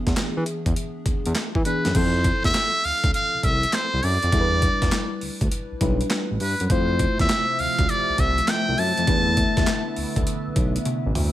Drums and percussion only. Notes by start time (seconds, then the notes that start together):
0.07 kick, snare, closed hi-hat
0.17 snare, clap, closed hi-hat
0.46 closed hi-hat
0.66 kick, closed hi-hat
0.76 closed hi-hat
1.06 kick, closed hi-hat
1.26 closed hi-hat
1.35 snare, clap, closed hi-hat
1.55 kick
1.65 closed hi-hat
1.85 snare, closed hi-hat
1.95 kick, closed hi-hat, crash
2.24 kick, closed hi-hat
2.44 kick, snare, closed hi-hat
2.54 snare, clap, closed hi-hat
2.84 open hi-hat
3.04 kick, closed hi-hat
3.14 closed hi-hat
3.43 kick, closed hi-hat
3.63 closed hi-hat
3.73 snare, clap, closed hi-hat
4.03 open hi-hat
4.23 closed hi-hat
4.32 kick, closed hi-hat
4.62 kick, closed hi-hat
4.82 kick, snare, closed hi-hat
4.92 snare, clap, closed hi-hat
5.21 open hi-hat
5.41 kick, closed hi-hat
5.52 closed hi-hat
5.81 kick, closed hi-hat
6.01 closed hi-hat
6.10 snare, clap, closed hi-hat
6.40 open hi-hat
6.60 closed hi-hat
6.70 kick, closed hi-hat
6.99 kick, closed hi-hat
7.19 kick, snare, closed hi-hat
7.29 snare, clap, closed hi-hat
7.59 open hi-hat
7.79 kick, closed hi-hat
7.89 closed hi-hat
8.18 kick, closed hi-hat
8.38 closed hi-hat
8.48 snare, clap, closed hi-hat
8.78 open hi-hat
8.98 closed hi-hat
9.07 kick, closed hi-hat
9.37 kick, closed hi-hat
9.57 kick, snare, closed hi-hat
9.67 snare, clap, closed hi-hat
9.96 open hi-hat
10.16 kick, closed hi-hat
10.27 closed hi-hat
10.56 kick, closed hi-hat
10.76 closed hi-hat
10.85 closed hi-hat, high tom
11.15 mid tom, open hi-hat